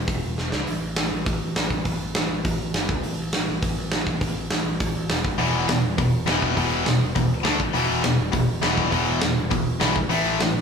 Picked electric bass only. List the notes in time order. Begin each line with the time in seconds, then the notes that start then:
0.08 E1
0.24 E1
0.38 E1
0.53 C#2
0.68 A1
0.83 A1
0.98 A1
1.12 A1
1.27 A1
1.42 A1
1.56 A1
1.86 A1
2.00 A1
2.15 A1
2.30 A1
2.45 A1
2.59 A1
2.74 G1
2.89 C#2
3.04 A1
3.19 A1
3.35 A1
3.49 A1
3.63 A1
3.77 A1
3.92 A1
4.22 A1
4.36 A1
4.51 A1
4.65 A1
4.81 A1
4.96 A1
5.10 E1
5.25 F#1
5.40 E1
5.54 E1
5.69 E1
5.84 E1
5.99 E1
6.13 E1
6.27 E1
6.57 E1
6.72 E1
6.87 E1
7.01 E1
7.16 E1
7.30 C#2
7.45 D2
7.60 G#1
7.75 E1
7.89 E1
8.05 E1
8.19 E1
8.33 E1
8.48 E1
8.63 E1
8.93 E1
9.07 E1
9.23 E1
9.37 E1
9.52 E1
9.67 E1
9.81 B1
9.96 C#2
10.10 A1
10.24 A1
10.39 A1
10.54 A1